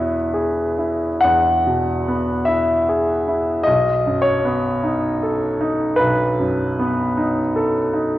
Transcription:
Already playing: E2 B2 B3 E4 B4 C#5
0.34 G#4
0.78 E4
1.21 E2 F#5
1.67 B2
2.08 B3
2.45 E4 E5
2.89 G#4
3.28 E4
3.63 B1 D#5
4.06 F#2
4.22 C#5
4.45 B3
4.84 D#4
5.23 A4
5.61 D#4
5.96 B1 B4
6.39 F#2
6.79 B3
7.17 D#4
7.56 A4
7.93 D#4

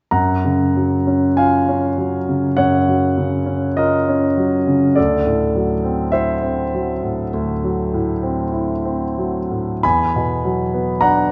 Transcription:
0.11 F#2 F#5 A#5
0.45 C#3
0.76 F#3
1.07 C#4
1.37 F4 F5 G#5
1.69 C#4
1.98 F#3
2.29 C#3
2.57 F#2 C#5 F#5
2.89 F#3
3.18 C#3
3.46 C#4
3.77 F4 A#4 D#5
4.09 C#4
4.38 F#3
4.67 C#3
4.96 D2 A4 D5
5.26 A2
5.56 F#3
5.84 C4
6.12 E4 C5 E5
6.42 C4
6.75 F#3
7.03 A2
7.34 D2
7.64 F#3
7.94 A2
8.23 C4
8.52 E4
8.85 C4
9.18 F#3
9.51 A2
9.83 E2 G#5 B5
10.16 B2
10.45 F#3
10.74 B3
11.01 D4 F#5 A#5

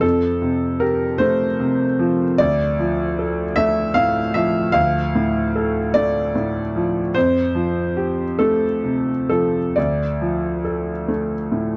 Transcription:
Already playing: F3
0.01 F2 A4
0.42 C3
0.80 G4 A#4
1.18 A3 C5
1.60 C3
1.99 F3
2.38 D2 D5
2.79 F3
3.19 A4
3.56 A3 E5
3.94 A2 F5
4.34 F3 E5
4.72 D2 F5
5.15 A2
5.56 A4
5.94 A3 D5
6.35 A2
6.76 F3
7.15 F2 C5
7.55 F3
7.97 G4
8.39 A3 A4
8.84 C3
9.29 F3 A4
9.76 D2 D5
10.21 F3
10.65 A4
11.08 A3
11.52 A2

